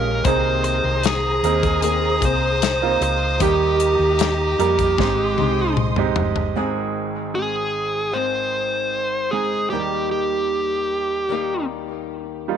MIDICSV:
0, 0, Header, 1, 7, 480
1, 0, Start_track
1, 0, Key_signature, -4, "major"
1, 0, Tempo, 789474
1, 152, Time_signature, 4, 2, 24, 8
1, 7643, End_track
2, 0, Start_track
2, 0, Title_t, "String section"
2, 0, Program_c, 0, 48
2, 0, Note_on_c, 0, 56, 67
2, 0, Note_on_c, 0, 61, 65
2, 0, Note_on_c, 0, 77, 67
2, 129, Note_off_c, 0, 77, 0
2, 133, Note_off_c, 0, 56, 0
2, 138, Note_off_c, 0, 61, 0
2, 149, Note_on_c, 0, 82, 66
2, 154, Note_on_c, 0, 68, 70
2, 154, Note_on_c, 0, 72, 65
2, 154, Note_on_c, 0, 87, 80
2, 2051, Note_off_c, 0, 82, 0
2, 2054, Note_off_c, 0, 68, 0
2, 2054, Note_off_c, 0, 72, 0
2, 2077, Note_on_c, 0, 75, 60
2, 2077, Note_on_c, 0, 82, 65
2, 2078, Note_on_c, 0, 67, 70
2, 3008, Note_off_c, 0, 87, 0
2, 3025, Note_off_c, 0, 67, 0
2, 3025, Note_off_c, 0, 82, 0
2, 3035, Note_on_c, 0, 84, 58
2, 3036, Note_on_c, 0, 87, 65
2, 3039, Note_on_c, 0, 56, 63
2, 3975, Note_off_c, 0, 75, 0
2, 3984, Note_off_c, 0, 84, 0
2, 3984, Note_off_c, 0, 87, 0
2, 3986, Note_off_c, 0, 56, 0
2, 7643, End_track
3, 0, Start_track
3, 0, Title_t, "Lead electric guitar"
3, 0, Program_c, 1, 29
3, 0, Note_on_c, 1, 70, 84
3, 147, Note_off_c, 1, 70, 0
3, 154, Note_on_c, 1, 72, 88
3, 385, Note_off_c, 1, 72, 0
3, 393, Note_on_c, 1, 72, 74
3, 639, Note_off_c, 1, 72, 0
3, 641, Note_on_c, 1, 68, 77
3, 1092, Note_off_c, 1, 68, 0
3, 1116, Note_on_c, 1, 68, 81
3, 1361, Note_off_c, 1, 68, 0
3, 1369, Note_on_c, 1, 72, 85
3, 1836, Note_off_c, 1, 72, 0
3, 1843, Note_on_c, 1, 72, 88
3, 2061, Note_off_c, 1, 72, 0
3, 2077, Note_on_c, 1, 67, 73
3, 2553, Note_off_c, 1, 67, 0
3, 2560, Note_on_c, 1, 67, 67
3, 3492, Note_off_c, 1, 67, 0
3, 4469, Note_on_c, 1, 68, 59
3, 4946, Note_on_c, 1, 72, 66
3, 4965, Note_off_c, 1, 68, 0
3, 5661, Note_on_c, 1, 68, 59
3, 5691, Note_off_c, 1, 72, 0
3, 5889, Note_off_c, 1, 68, 0
3, 5897, Note_on_c, 1, 67, 57
3, 6127, Note_off_c, 1, 67, 0
3, 6149, Note_on_c, 1, 67, 53
3, 7086, Note_off_c, 1, 67, 0
3, 7643, End_track
4, 0, Start_track
4, 0, Title_t, "Grand piano"
4, 0, Program_c, 2, 0
4, 0, Control_c, 2, 64, 127
4, 0, Note_on_c, 2, 56, 65
4, 0, Note_on_c, 2, 61, 62
4, 0, Note_on_c, 2, 65, 66
4, 0, Note_on_c, 2, 67, 73
4, 0, Note_on_c, 2, 68, 75
4, 134, Note_off_c, 2, 56, 0
4, 135, Note_off_c, 2, 61, 0
4, 136, Note_off_c, 2, 65, 0
4, 137, Note_off_c, 2, 67, 0
4, 158, Note_on_c, 2, 58, 70
4, 159, Control_c, 2, 64, 0
4, 160, Note_on_c, 2, 60, 59
4, 161, Note_off_c, 2, 68, 0
4, 161, Note_on_c, 2, 48, 61
4, 164, Note_on_c, 2, 63, 64
4, 164, Note_on_c, 2, 68, 76
4, 252, Control_c, 2, 64, 127
4, 839, Note_off_c, 2, 58, 0
4, 840, Note_off_c, 2, 60, 0
4, 842, Note_off_c, 2, 63, 0
4, 842, Note_off_c, 2, 68, 0
4, 852, Note_off_c, 2, 48, 0
4, 874, Note_on_c, 2, 58, 68
4, 877, Note_on_c, 2, 60, 66
4, 881, Note_on_c, 2, 63, 60
4, 881, Note_on_c, 2, 70, 75
4, 1671, Note_off_c, 2, 58, 0
4, 1672, Note_off_c, 2, 60, 0
4, 1674, Note_off_c, 2, 63, 0
4, 1674, Note_off_c, 2, 70, 0
4, 1713, Note_on_c, 2, 58, 69
4, 1717, Note_on_c, 2, 60, 66
4, 1718, Note_on_c, 2, 63, 64
4, 1721, Note_on_c, 2, 65, 75
4, 2054, Note_off_c, 2, 58, 0
4, 2056, Note_off_c, 2, 60, 0
4, 2057, Note_off_c, 2, 63, 0
4, 2058, Note_off_c, 2, 65, 0
4, 2075, Note_on_c, 2, 55, 69
4, 2077, Note_on_c, 2, 58, 60
4, 2078, Note_on_c, 2, 51, 61
4, 2079, Control_c, 2, 64, 0
4, 2080, Note_on_c, 2, 67, 73
4, 2081, Note_on_c, 2, 63, 65
4, 2198, Control_c, 2, 64, 127
4, 2757, Note_off_c, 2, 55, 0
4, 2758, Note_off_c, 2, 58, 0
4, 2760, Note_off_c, 2, 63, 0
4, 2760, Note_off_c, 2, 67, 0
4, 2770, Note_off_c, 2, 51, 0
4, 2789, Note_on_c, 2, 55, 67
4, 2793, Note_on_c, 2, 58, 62
4, 2793, Note_on_c, 2, 63, 60
4, 2796, Note_on_c, 2, 70, 75
4, 3029, Note_off_c, 2, 63, 0
4, 3031, Note_off_c, 2, 55, 0
4, 3032, Note_off_c, 2, 58, 0
4, 3032, Note_on_c, 2, 56, 65
4, 3034, Note_off_c, 2, 70, 0
4, 3035, Note_on_c, 2, 60, 63
4, 3038, Note_on_c, 2, 44, 57
4, 3038, Note_on_c, 2, 63, 62
4, 3039, Control_c, 2, 64, 0
4, 3039, Note_on_c, 2, 72, 75
4, 3139, Control_c, 2, 64, 127
4, 3602, Note_off_c, 2, 56, 0
4, 3603, Note_off_c, 2, 60, 0
4, 3605, Note_off_c, 2, 63, 0
4, 3605, Note_off_c, 2, 72, 0
4, 3634, Note_on_c, 2, 56, 75
4, 3639, Note_on_c, 2, 60, 74
4, 3641, Note_on_c, 2, 63, 72
4, 3642, Note_on_c, 2, 67, 78
4, 3731, Note_off_c, 2, 44, 0
4, 3975, Note_off_c, 2, 56, 0
4, 3977, Note_off_c, 2, 60, 0
4, 3978, Note_off_c, 2, 63, 0
4, 3979, Note_off_c, 2, 67, 0
4, 3990, Note_on_c, 2, 56, 58
4, 3992, Note_on_c, 2, 32, 54
4, 3992, Note_on_c, 2, 60, 53
4, 3992, Note_on_c, 2, 63, 51
4, 3993, Note_on_c, 2, 44, 49
4, 3994, Note_on_c, 2, 68, 67
4, 4001, Control_c, 2, 64, 0
4, 4090, Control_c, 2, 64, 127
4, 4903, Note_off_c, 2, 56, 0
4, 4904, Note_off_c, 2, 60, 0
4, 4904, Note_off_c, 2, 63, 0
4, 4905, Note_off_c, 2, 68, 0
4, 5671, Note_on_c, 2, 56, 52
4, 5673, Note_on_c, 2, 60, 47
4, 5676, Note_on_c, 2, 63, 45
4, 5677, Note_on_c, 2, 68, 57
4, 5888, Note_off_c, 2, 32, 0
4, 5888, Note_off_c, 2, 44, 0
4, 5900, Note_off_c, 2, 56, 0
4, 5900, Note_off_c, 2, 60, 0
4, 5902, Note_off_c, 2, 63, 0
4, 5902, Note_off_c, 2, 68, 0
4, 5912, Note_on_c, 2, 55, 53
4, 5915, Note_on_c, 2, 39, 44
4, 5915, Note_on_c, 2, 58, 43
4, 5916, Note_on_c, 2, 51, 45
4, 5916, Note_on_c, 2, 63, 47
4, 5918, Note_on_c, 2, 67, 54
4, 5919, Control_c, 2, 64, 0
4, 6025, Control_c, 2, 64, 127
4, 6824, Note_off_c, 2, 55, 0
4, 6826, Note_off_c, 2, 58, 0
4, 6826, Note_off_c, 2, 63, 0
4, 6827, Note_off_c, 2, 67, 0
4, 7589, Note_on_c, 2, 55, 63
4, 7592, Note_on_c, 2, 63, 56
4, 7593, Note_on_c, 2, 58, 56
4, 7595, Note_on_c, 2, 65, 65
4, 7643, Note_off_c, 2, 39, 0
4, 7643, Note_off_c, 2, 51, 0
4, 7643, Note_off_c, 2, 55, 0
4, 7643, Note_off_c, 2, 58, 0
4, 7643, Note_off_c, 2, 63, 0
4, 7643, Note_off_c, 2, 65, 0
4, 7643, End_track
5, 0, Start_track
5, 0, Title_t, "Nylon-string guitar"
5, 0, Program_c, 3, 24
5, 0, Note_on_c, 3, 56, 41
5, 0, Note_on_c, 3, 61, 44
5, 0, Note_on_c, 3, 65, 48
5, 149, Note_on_c, 3, 48, 70
5, 151, Note_off_c, 3, 65, 0
5, 156, Note_on_c, 3, 51, 74
5, 157, Note_off_c, 3, 61, 0
5, 161, Note_off_c, 3, 56, 0
5, 163, Note_on_c, 3, 58, 76
5, 169, Note_on_c, 3, 60, 78
5, 177, Note_on_c, 3, 68, 77
5, 1103, Note_off_c, 3, 51, 0
5, 1106, Note_on_c, 3, 51, 60
5, 1110, Note_off_c, 3, 48, 0
5, 1110, Note_off_c, 3, 58, 0
5, 1112, Note_on_c, 3, 58, 59
5, 1113, Note_off_c, 3, 60, 0
5, 1116, Note_off_c, 3, 68, 0
5, 1121, Note_on_c, 3, 60, 61
5, 1123, Note_on_c, 3, 68, 67
5, 1335, Note_off_c, 3, 68, 0
5, 1342, Note_on_c, 3, 68, 51
5, 1344, Note_off_c, 3, 60, 0
5, 1349, Note_off_c, 3, 51, 0
5, 1350, Note_off_c, 3, 58, 0
5, 1351, Note_on_c, 3, 60, 46
5, 1357, Note_on_c, 3, 58, 44
5, 2060, Note_on_c, 3, 51, 65
5, 2067, Note_off_c, 3, 58, 0
5, 2067, Note_off_c, 3, 68, 0
5, 2072, Note_off_c, 3, 60, 0
5, 2075, Note_on_c, 3, 58, 75
5, 2080, Note_on_c, 3, 63, 75
5, 2090, Note_on_c, 3, 67, 73
5, 3019, Note_off_c, 3, 51, 0
5, 3021, Note_on_c, 3, 56, 58
5, 3027, Note_off_c, 3, 58, 0
5, 3029, Note_on_c, 3, 60, 51
5, 3034, Note_off_c, 3, 63, 0
5, 3037, Note_on_c, 3, 63, 54
5, 3041, Note_off_c, 3, 67, 0
5, 3267, Note_off_c, 3, 56, 0
5, 3267, Note_off_c, 3, 63, 0
5, 3271, Note_off_c, 3, 60, 0
5, 3275, Note_on_c, 3, 63, 48
5, 3280, Note_on_c, 3, 60, 48
5, 3286, Note_on_c, 3, 56, 45
5, 3986, Note_on_c, 3, 44, 54
5, 3989, Note_off_c, 3, 56, 0
5, 3991, Note_off_c, 3, 60, 0
5, 3991, Note_on_c, 3, 51, 52
5, 3992, Note_on_c, 3, 56, 62
5, 3993, Note_off_c, 3, 63, 0
5, 3993, Note_on_c, 3, 60, 58
5, 3995, Note_on_c, 3, 63, 58
5, 3996, Note_on_c, 3, 68, 58
5, 4457, Note_off_c, 3, 56, 0
5, 4461, Note_off_c, 3, 60, 0
5, 4464, Note_on_c, 3, 56, 32
5, 4469, Note_off_c, 3, 44, 0
5, 4469, Note_on_c, 3, 60, 34
5, 4472, Note_off_c, 3, 63, 0
5, 4474, Note_off_c, 3, 68, 0
5, 4474, Note_on_c, 3, 63, 40
5, 4481, Note_on_c, 3, 68, 37
5, 4934, Note_on_c, 3, 44, 51
5, 4940, Note_off_c, 3, 51, 0
5, 4941, Note_off_c, 3, 56, 0
5, 4943, Note_on_c, 3, 51, 54
5, 4946, Note_off_c, 3, 60, 0
5, 4948, Note_on_c, 3, 56, 59
5, 4953, Note_on_c, 3, 60, 57
5, 4954, Note_off_c, 3, 68, 0
5, 4955, Note_off_c, 3, 63, 0
5, 4958, Note_on_c, 3, 63, 54
5, 4961, Note_on_c, 3, 68, 57
5, 5900, Note_off_c, 3, 51, 0
5, 5903, Note_off_c, 3, 44, 0
5, 5903, Note_on_c, 3, 51, 53
5, 5906, Note_off_c, 3, 56, 0
5, 5909, Note_on_c, 3, 55, 50
5, 5912, Note_off_c, 3, 60, 0
5, 5916, Note_off_c, 3, 68, 0
5, 5916, Note_on_c, 3, 58, 50
5, 5920, Note_off_c, 3, 63, 0
5, 5922, Note_on_c, 3, 63, 50
5, 5927, Note_on_c, 3, 67, 65
5, 6860, Note_off_c, 3, 51, 0
5, 6863, Note_on_c, 3, 51, 58
5, 6864, Note_off_c, 3, 55, 0
5, 6871, Note_on_c, 3, 55, 63
5, 6873, Note_off_c, 3, 58, 0
5, 6880, Note_off_c, 3, 63, 0
5, 6880, Note_off_c, 3, 67, 0
5, 6880, Note_on_c, 3, 58, 72
5, 6883, Note_on_c, 3, 63, 73
5, 6891, Note_on_c, 3, 67, 64
5, 7643, Note_off_c, 3, 51, 0
5, 7643, Note_off_c, 3, 55, 0
5, 7643, Note_off_c, 3, 58, 0
5, 7643, Note_off_c, 3, 63, 0
5, 7643, Note_off_c, 3, 67, 0
5, 7643, End_track
6, 0, Start_track
6, 0, Title_t, "Fingered electric bass"
6, 0, Program_c, 4, 33
6, 0, Note_on_c, 4, 34, 81
6, 135, Note_off_c, 4, 34, 0
6, 152, Note_on_c, 4, 36, 94
6, 487, Note_off_c, 4, 36, 0
6, 511, Note_on_c, 4, 36, 77
6, 847, Note_off_c, 4, 36, 0
6, 871, Note_on_c, 4, 39, 87
6, 1327, Note_off_c, 4, 39, 0
6, 1350, Note_on_c, 4, 36, 83
6, 1807, Note_off_c, 4, 36, 0
6, 1829, Note_on_c, 4, 37, 78
6, 2054, Note_off_c, 4, 37, 0
6, 2069, Note_on_c, 4, 39, 99
6, 2406, Note_off_c, 4, 39, 0
6, 2427, Note_on_c, 4, 39, 84
6, 2765, Note_off_c, 4, 39, 0
6, 2790, Note_on_c, 4, 41, 74
6, 3014, Note_off_c, 4, 41, 0
6, 3031, Note_on_c, 4, 32, 87
6, 3255, Note_off_c, 4, 32, 0
6, 3270, Note_on_c, 4, 36, 79
6, 3746, Note_on_c, 4, 31, 70
6, 3756, Note_off_c, 4, 36, 0
6, 3972, Note_off_c, 4, 31, 0
6, 7643, End_track
7, 0, Start_track
7, 0, Title_t, "Drums"
7, 150, Note_on_c, 9, 42, 79
7, 152, Note_on_c, 9, 36, 107
7, 211, Note_off_c, 9, 42, 0
7, 213, Note_off_c, 9, 36, 0
7, 390, Note_on_c, 9, 42, 65
7, 451, Note_off_c, 9, 42, 0
7, 629, Note_on_c, 9, 42, 81
7, 642, Note_on_c, 9, 38, 111
7, 690, Note_off_c, 9, 42, 0
7, 703, Note_off_c, 9, 38, 0
7, 874, Note_on_c, 9, 42, 63
7, 935, Note_off_c, 9, 42, 0
7, 992, Note_on_c, 9, 36, 82
7, 992, Note_on_c, 9, 42, 46
7, 1053, Note_off_c, 9, 36, 0
7, 1053, Note_off_c, 9, 42, 0
7, 1109, Note_on_c, 9, 42, 77
7, 1170, Note_off_c, 9, 42, 0
7, 1349, Note_on_c, 9, 36, 80
7, 1350, Note_on_c, 9, 42, 63
7, 1410, Note_off_c, 9, 36, 0
7, 1410, Note_off_c, 9, 42, 0
7, 1594, Note_on_c, 9, 42, 93
7, 1600, Note_on_c, 9, 38, 89
7, 1654, Note_off_c, 9, 42, 0
7, 1661, Note_off_c, 9, 38, 0
7, 1834, Note_on_c, 9, 42, 56
7, 1895, Note_off_c, 9, 42, 0
7, 2069, Note_on_c, 9, 42, 80
7, 2070, Note_on_c, 9, 36, 96
7, 2130, Note_off_c, 9, 42, 0
7, 2131, Note_off_c, 9, 36, 0
7, 2309, Note_on_c, 9, 42, 69
7, 2370, Note_off_c, 9, 42, 0
7, 2547, Note_on_c, 9, 42, 83
7, 2560, Note_on_c, 9, 38, 107
7, 2608, Note_off_c, 9, 42, 0
7, 2621, Note_off_c, 9, 38, 0
7, 2795, Note_on_c, 9, 42, 62
7, 2855, Note_off_c, 9, 42, 0
7, 2910, Note_on_c, 9, 36, 76
7, 2911, Note_on_c, 9, 42, 50
7, 2971, Note_off_c, 9, 36, 0
7, 2972, Note_off_c, 9, 42, 0
7, 3030, Note_on_c, 9, 36, 87
7, 3038, Note_on_c, 9, 38, 53
7, 3091, Note_off_c, 9, 36, 0
7, 3099, Note_off_c, 9, 38, 0
7, 3270, Note_on_c, 9, 48, 59
7, 3331, Note_off_c, 9, 48, 0
7, 3508, Note_on_c, 9, 47, 80
7, 3568, Note_off_c, 9, 47, 0
7, 3626, Note_on_c, 9, 45, 70
7, 3686, Note_off_c, 9, 45, 0
7, 3744, Note_on_c, 9, 43, 83
7, 3805, Note_off_c, 9, 43, 0
7, 3865, Note_on_c, 9, 43, 77
7, 3926, Note_off_c, 9, 43, 0
7, 7643, End_track
0, 0, End_of_file